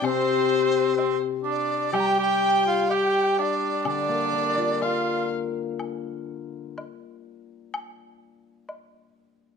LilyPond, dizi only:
\new Staff \with { instrumentName = "Dizi" } { \time 2/4 \tempo 4 = 63 c''4~ c''16 r16 d''8 | g''16 g''8 f''16 g''8 d''8 | d''4. r8 | r2 |
r2 | }